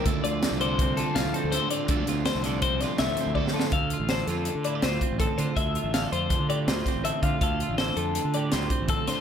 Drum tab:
HH |x--x--x--x--x--x--x--x--x--x--|x--x--x--x--x--x--x--x--------|x--x--x--x--x--x--x--x--x--x--|x--x--x--x--x--x--x--x--x--x--|
SD |------o-----------o-----------|---o--o--o-----o--o--o----o-o-|------o--o--------o-----------|------o-----------o--o--------|
BD |o-----------o-----------------|o-----------o-----------o-----|o--------------------o--o-----|o-----------o--------o-----o--|

HH |x--x--x--x--x--x--x--x--x--x--|
SD |------o-----------o--------o--|
BD |o--------------------o--o-----|